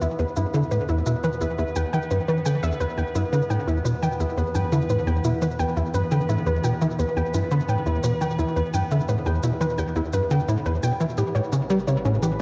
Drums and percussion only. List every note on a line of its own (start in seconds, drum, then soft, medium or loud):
0.01 shaker medium
0.19 high conga soft
0.19 shaker soft
0.36 shaker medium
0.54 shaker soft
0.71 high conga soft
0.71 shaker medium
0.88 shaker soft
1.06 shaker medium
1.23 high conga soft
1.23 shaker medium
1.41 shaker medium
1.58 shaker soft
1.76 high conga soft
1.76 shaker medium
1.93 shaker soft
2.11 shaker soft
2.28 high conga soft
2.28 shaker soft
2.45 shaker medium
2.63 shaker medium
2.81 shaker soft
2.98 high conga soft
2.98 shaker soft
3.15 shaker medium
3.33 shaker soft
3.50 high conga soft
3.50 shaker soft
3.68 shaker soft
3.85 shaker medium
4.03 high conga soft
4.03 shaker medium
4.20 shaker medium
4.37 shaker soft
4.55 high conga soft
4.55 shaker medium
4.72 shaker medium
4.90 shaker soft
5.07 high conga soft
5.07 shaker soft
5.24 shaker medium
5.42 shaker medium
5.59 high conga soft
5.59 shaker soft
5.77 shaker soft
5.94 shaker medium
6.12 high conga soft
6.12 shaker soft
6.30 shaker soft
6.47 shaker soft
6.64 high conga soft
6.64 shaker medium
6.82 shaker soft
6.99 shaker soft
7.17 high conga soft
7.17 shaker soft
7.34 shaker medium
7.51 shaker soft
7.69 high conga soft
7.69 shaker soft
7.86 shaker soft
8.04 shaker medium
8.21 high conga soft
8.21 shaker soft
8.39 shaker soft
8.56 shaker soft
8.73 high conga soft
8.73 shaker medium
8.91 shaker soft
9.08 shaker soft
9.26 high conga soft
9.26 shaker soft
9.43 shaker medium
9.61 shaker soft
9.78 high conga soft
9.78 shaker soft
9.96 shaker soft
10.13 shaker medium
10.30 high conga soft
10.30 shaker soft
10.48 shaker soft
10.65 shaker soft
10.83 high conga soft
10.83 shaker medium
11.00 shaker soft
11.17 shaker soft
11.35 high conga soft
11.35 shaker soft
11.53 shaker medium
11.70 shaker soft
11.88 high conga soft
11.88 shaker soft
12.05 shaker soft
12.22 shaker medium